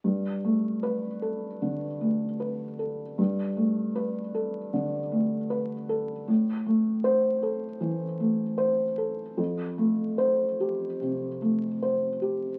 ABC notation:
X:1
M:4/4
L:1/8
Q:1/4=77
K:Gmix
V:1 name="Felt piano"
z2 B2 z4 | z8 | z2 c2 z4 | z2 c2 z4 |]
V:2 name="Felt piano"
G,, A,2 A D, A, B A | G,, A, B A D, A, B A | A,, A,2 A E, A, c A | F,, A,2 G C, A, c G |]